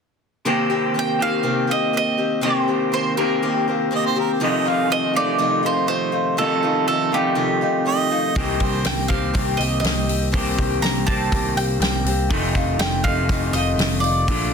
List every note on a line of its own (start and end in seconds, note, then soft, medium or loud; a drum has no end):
0.45 0.71 C3 medium
0.45 0.71 D#3 medium
0.45 0.71 A#3 medium
0.45 0.69 C4 medium
0.45 0.69 G4 medium
0.70 0.94 A#3 medium
0.70 0.94 C4 medium
0.70 0.94 G4 medium
0.94 1.20 D#3 medium
0.94 1.20 A#3 medium
0.94 1.20 C4 medium
0.94 1.19 G4 medium
0.99 1.22 G5 medium
1.20 2.42 C3 medium
1.20 2.43 D#3 medium
1.20 1.42 A#3 soft
1.20 1.43 C4 soft
1.20 1.43 G4 medium
1.20 1.72 F5 medium
1.43 1.69 C3 medium
1.43 1.69 D#3 medium
1.43 1.68 A#3 medium
1.43 1.67 C4 medium
1.43 1.66 G4 medium
1.67 1.93 A#3 soft
1.67 1.93 C4 soft
1.67 1.93 G4 soft
1.67 1.96 D#5 medium
1.93 2.19 D#3 medium
1.93 2.18 A#3 medium
1.93 2.17 C4 medium
1.93 2.16 G4 medium
1.93 2.43 D#5 loud
2.18 2.41 A#3 soft
2.18 2.41 C4 soft
2.18 2.41 G4 soft
2.41 2.68 C3 medium
2.41 2.68 D#3 medium
2.41 2.68 A#3 medium
2.41 2.67 C4 medium
2.41 2.66 G4 medium
2.41 2.92 C5 medium
2.68 2.91 A#3 soft
2.68 2.92 C4 soft
2.68 2.93 G4 medium
2.92 3.17 D#3 medium
2.92 3.17 A#3 medium
2.92 3.16 C4 medium
2.92 3.16 G4 medium
2.92 3.17 C5 medium
3.17 4.41 C3 medium
3.17 4.41 D#3 medium
3.17 3.42 A#3 soft
3.17 3.42 C4 soft
3.17 3.42 G4 medium
3.17 4.13 A#4 medium
3.42 3.67 C3 medium
3.42 3.68 D#3 medium
3.42 3.68 A#3 medium
3.42 3.67 C4 medium
3.42 3.66 G4 medium
3.68 3.91 A#3 soft
3.68 3.91 C4 soft
3.68 3.92 G4 medium
3.91 4.16 D#3 medium
3.91 4.17 A#3 medium
3.91 4.15 C4 medium
3.91 4.14 G4 medium
3.96 4.06 D#5 medium
4.07 4.17 C5 medium
4.16 4.41 A#3 soft
4.16 4.40 C4 medium
4.16 4.41 G4 medium
4.20 4.35 A#4 medium
4.33 4.47 G4 medium
4.40 4.65 F2 medium
4.40 4.66 C3 medium
4.40 4.66 D#3 medium
4.40 4.66 A3 medium
4.40 4.65 D#4 loud
4.40 4.64 F4 medium
4.45 4.70 D#5 medium
4.65 4.89 D#3 medium
4.65 4.89 A3 medium
4.65 4.91 D#4 medium
4.65 4.90 F4 medium
4.65 4.92 F5 medium
4.90 5.14 D#3 medium
4.90 5.14 A3 medium
4.90 5.14 D#4 medium
4.90 5.12 F4 medium
4.90 5.16 D#5 loud
5.13 5.38 D#3 soft
5.13 5.38 A3 soft
5.13 5.38 D#4 soft
5.13 5.38 F4 soft
5.13 5.62 D5 loud
5.18 6.37 F2 medium
5.18 6.38 C3 medium
5.38 5.64 F2 medium
5.38 5.64 C3 medium
5.38 5.64 D#3 medium
5.38 5.63 A3 medium
5.38 5.62 D#4 medium
5.38 5.61 F4 medium
5.63 5.86 D#3 soft
5.63 5.87 A3 soft
5.63 5.88 D#4 soft
5.63 5.88 F4 medium
5.63 5.87 C5 medium
5.87 6.13 D#3 medium
5.87 6.12 A3 medium
5.87 6.11 D#4 medium
5.87 6.11 F4 medium
5.87 6.38 C5 medium
6.12 6.37 D#3 soft
6.12 6.37 A3 soft
6.12 6.37 D#4 soft
6.12 6.37 F4 medium
6.37 6.63 F2 medium
6.37 6.63 C3 medium
6.37 6.63 D#3 medium
6.37 6.63 A3 medium
6.37 6.63 D#4 medium
6.37 6.62 F4 medium
6.37 6.86 A4 medium
6.63 6.86 D#3 soft
6.63 6.87 A3 soft
6.63 6.87 D#4 soft
6.63 6.87 F4 medium
6.87 7.12 D#3 medium
6.87 7.12 A3 medium
6.87 7.12 D#4 medium
6.87 7.11 F4 medium
6.87 7.11 A4 medium
7.12 8.36 F2 medium
7.12 8.35 C3 medium
7.12 7.34 D#3 soft
7.12 7.34 A3 soft
7.12 7.35 D#4 soft
7.12 7.35 F4 medium
7.12 8.08 G4 medium
7.35 7.61 F2 medium
7.35 7.61 C3 medium
7.35 7.61 D#3 medium
7.35 7.61 A3 medium
7.35 7.61 D#4 medium
7.35 7.60 F4 medium
7.61 7.84 D#3 soft
7.61 7.85 A3 soft
7.61 7.85 D#4 soft
7.61 7.86 F4 medium
7.85 8.11 D#3 medium
7.85 8.11 A3 medium
7.85 8.10 D#4 medium
7.85 8.10 F4 medium
7.85 8.35 D#5 loud
8.11 8.34 D#3 soft
8.11 8.35 A3 soft
8.11 8.36 D#4 medium
8.11 8.36 F4 medium
8.35 8.59 C2 medium
8.35 8.60 C3 medium
8.35 8.60 D#3 medium
8.35 8.60 A#3 medium
8.35 8.60 C4 medium
8.35 8.60 G4 medium
8.35 8.65 D#5 medium
8.35 kick loud
8.35 open hi-hat medium
8.60 8.84 C2 medium
8.60 8.84 A#3 medium
8.60 8.84 C4 medium
8.60 8.85 G4 medium
8.60 8.86 C5 medium
8.60 kick medium
8.60 open hi-hat soft
8.84 9.09 C2 medium
8.84 9.09 D#3 medium
8.84 9.10 A#3 medium
8.84 9.08 C4 medium
8.84 9.08 G4 medium
8.84 9.08 G5 loud
8.84 snare loud
8.84 open hi-hat medium
9.08 9.33 C2 medium
9.08 10.32 C3 medium
9.08 10.32 D#3 medium
9.08 9.33 A#3 soft
9.08 9.33 C4 soft
9.08 9.33 G4 soft
9.08 9.60 F5 medium
9.08 kick medium
9.08 open hi-hat soft
9.33 9.58 C2 medium
9.33 9.59 C3 medium
9.33 9.59 D#3 medium
9.33 9.59 A#3 medium
9.33 9.58 C4 medium
9.33 9.58 G4 medium
9.33 kick loud
9.33 open hi-hat medium
9.57 9.82 C2 medium
9.57 9.82 A#3 soft
9.57 9.83 C4 soft
9.57 9.84 G4 medium
9.57 9.79 D#5 medium
9.57 open hi-hat soft
9.80 10.31 C2 medium
9.80 10.08 D#3 medium
9.80 10.07 A#3 soft
9.80 10.27 D#5 medium
9.84 10.06 C4 medium
9.84 10.06 G4 medium
9.84 snare loud
9.84 open hi-hat medium
10.07 10.31 A#3 soft
10.07 10.31 C4 medium
10.07 10.32 G4 soft
10.07 open hi-hat soft
10.32 10.57 C2 medium
10.32 10.57 C3 medium
10.32 10.57 D#3 medium
10.32 10.57 A#3 medium
10.32 10.57 C4 medium
10.32 10.56 G4 medium
10.32 kick loud
10.32 open hi-hat medium
10.57 10.81 C2 medium
10.57 10.82 A#3 medium
10.57 10.83 C4 medium
10.57 10.82 G4 medium
10.57 kick medium
10.57 open hi-hat soft
10.82 11.29 C2 medium
10.82 11.07 D#3 medium
10.82 11.07 A#3 medium
10.82 11.07 C4 medium
10.82 11.05 G4 medium
10.82 11.06 A#5 medium
10.82 snare loud
10.82 open hi-hat medium
11.06 12.28 C3 medium
11.06 12.29 D#3 medium
11.06 11.31 A#3 soft
11.06 11.31 C4 soft
11.06 11.31 G4 medium
11.06 11.57 A5 medium
11.06 kick medium
11.06 open hi-hat soft
11.32 11.55 C2 medium
11.32 11.56 C3 medium
11.32 11.56 D#3 medium
11.32 11.57 A#3 medium
11.32 11.56 C4 medium
11.32 11.56 G4 medium
11.32 kick medium
11.32 open hi-hat medium
11.55 11.79 C2 medium
11.55 11.80 A#3 soft
11.55 11.80 C4 soft
11.55 11.82 G4 medium
11.55 11.64 G5 medium
11.55 open hi-hat soft
11.80 12.03 C2 loud
11.80 12.05 D#3 medium
11.80 12.06 A#3 medium
11.80 12.06 C4 medium
11.80 12.05 G4 medium
11.80 12.27 G5 medium
11.80 snare loud
11.80 open hi-hat medium
12.04 12.28 C2 medium
12.04 12.31 C4 soft
12.04 12.31 G4 medium
12.04 open hi-hat soft
12.09 12.32 A#3 soft
12.30 12.55 F2 medium
12.30 12.55 C3 medium
12.30 12.56 D#3 medium
12.30 12.55 A3 medium
12.30 12.55 D#4 medium
12.30 12.54 F4 medium
12.30 kick medium
12.30 open hi-hat medium
12.55 12.78 F1 medium
12.55 12.79 D#3 medium
12.55 12.80 A3 medium
12.55 12.80 D#4 medium
12.55 12.80 F4 medium
12.55 kick medium
12.55 open hi-hat soft
12.78 13.03 F1 medium
12.78 13.05 D#3 medium
12.78 13.05 A3 medium
12.78 13.05 D#4 medium
12.78 13.04 F4 medium
12.78 13.03 G5 loud
12.78 snare loud
12.78 open hi-hat medium
13.04 13.28 F1 medium
13.04 14.27 F2 medium
13.04 14.27 C3 medium
13.04 13.29 D#3 soft
13.04 13.29 A3 soft
13.04 13.30 D#4 soft
13.04 13.29 F4 soft
13.04 13.55 F5 medium
13.04 kick medium
13.04 open hi-hat soft
13.29 13.51 F1 loud
13.29 13.54 F2 medium
13.29 13.54 C3 medium
13.29 13.54 D#3 medium
13.29 13.54 A3 medium
13.29 13.53 D#4 medium
13.29 13.53 F4 medium
13.29 kick loud
13.29 open hi-hat medium
13.52 13.76 F1 medium
13.52 13.77 D#3 soft
13.52 13.78 A3 soft
13.52 13.78 D#4 soft
13.52 13.79 F4 medium
13.52 14.00 D#5 medium
13.52 open hi-hat soft
13.77 14.25 F1 medium
13.77 14.03 D#3 medium
13.77 14.03 A3 medium
13.77 14.02 D#4 medium
13.77 14.01 F4 medium
13.77 snare loud
13.77 open hi-hat medium
14.00 14.28 D#3 soft
14.00 14.28 A3 soft
14.00 14.28 D#4 soft
14.00 14.27 F4 medium
14.00 14.54 D5 medium
14.00 open hi-hat soft
14.28 14.51 A#1 medium
14.28 14.53 A#2 medium
14.28 14.54 D3 medium
14.28 14.53 F3 medium
14.28 14.53 A3 medium
14.28 14.53 D4 medium
14.28 14.52 F4 medium
14.28 kick loud
14.28 open hi-hat medium